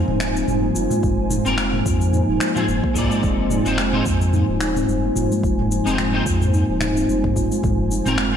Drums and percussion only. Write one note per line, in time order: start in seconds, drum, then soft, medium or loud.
0.08 mid tom medium
0.20 finger snap medium
0.20 shaker medium
0.36 shaker soft
0.48 mid tom medium
0.48 shaker soft
0.76 shaker medium
0.90 mid tom medium
0.90 shaker soft
1.03 kick loud
1.03 shaker soft
1.30 mid tom medium
1.30 shaker medium
1.46 shaker soft
1.58 finger snap medium
1.58 shaker soft
1.73 mid tom medium
1.86 kick loud
1.86 shaker medium
2.01 shaker soft
2.13 mid tom medium
2.13 shaker soft
2.40 finger snap medium
2.40 shaker medium
2.56 mid tom medium
2.56 shaker soft
2.68 shaker soft
2.84 kick loud
2.95 kick medium
2.95 mid tom medium
2.95 shaker medium
3.11 shaker soft
3.23 kick loud
3.23 shaker soft
3.50 mid tom medium
3.50 shaker medium
3.66 shaker soft
3.78 finger snap medium
3.78 shaker soft
3.93 mid tom medium
4.06 kick loud
4.06 shaker medium
4.21 shaker soft
4.33 mid tom medium
4.33 shaker soft
4.61 finger snap medium
4.61 shaker medium
4.76 mid tom medium
4.76 shaker soft
4.89 shaker soft
5.16 mid tom medium
5.16 shaker medium
5.32 shaker soft
5.43 kick loud
5.43 shaker soft
5.59 mid tom medium
5.72 shaker medium
5.87 shaker soft
5.98 finger snap medium
5.98 mid tom medium
5.98 shaker soft
6.26 kick loud
6.26 shaker medium
6.41 mid tom medium
6.41 shaker soft
6.54 shaker soft
6.81 finger snap medium
6.81 mid tom medium
6.81 shaker medium
6.97 shaker soft
7.09 shaker soft
7.24 kick loud
7.24 mid tom medium
7.36 kick medium
7.36 shaker medium
7.52 shaker soft
7.63 kick loud
7.63 mid tom medium
7.63 shaker soft
7.91 shaker medium
8.06 mid tom medium
8.06 shaker soft
8.18 finger snap medium
8.18 shaker soft